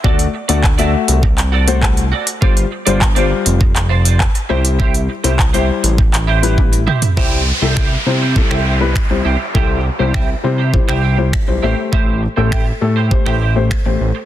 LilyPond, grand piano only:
\new Staff \with { instrumentName = "Grand piano" } { \time 4/4 \key c \major \tempo 4 = 101 <a fis' d''>16 r8 <a fis' d''>16 r16 <a fis' e''>8. r8. <a fis' c''>8 r8. | <g f' c''>16 r8 <g f' c''>16 r16 <g f' c''>4 r4 r16 <g e' c''>8~ | <g e' c''>8 r16 <g e' c''>16 r16 <g e' c''>8. r8. <g e' b'>8 r8. | <g e' c''>16 r8 <g e' a'>16 r8 <g e' c''>16 r16 <g e' a'>16 r8 <g e' b'>16 r16 <g e' c''>16 r8 |
<g e' a'>16 r8 <g e' c''>16 r8 <g e' c''>16 r16 <g e' c''>16 r8 <g e' c''>16 r16 <g e' c''>16 <a g' c''>8~ | <a g' c''>8 r16 <a g' a'>16 r8 <a g' a'>16 r16 <a g' c''>16 r8 <a g' c''>16 r16 <a g' c''>16 r8 | }